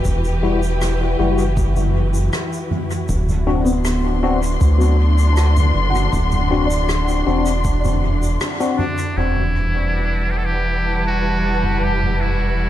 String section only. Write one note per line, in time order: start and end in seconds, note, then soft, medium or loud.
0.00 3.09 E3 medium
0.00 9.17 E4 medium
0.00 9.17 F#4 medium
0.00 3.09 G4 medium
0.00 3.09 B4 medium
3.09 9.17 D3 medium
3.67 10.56 D4 medium
3.71 9.17 C6 medium
9.17 12.70 E3 medium
9.36 12.70 G3 medium
9.56 12.70 B4 medium
9.81 12.70 E4 medium
9.81 12.70 F#5 medium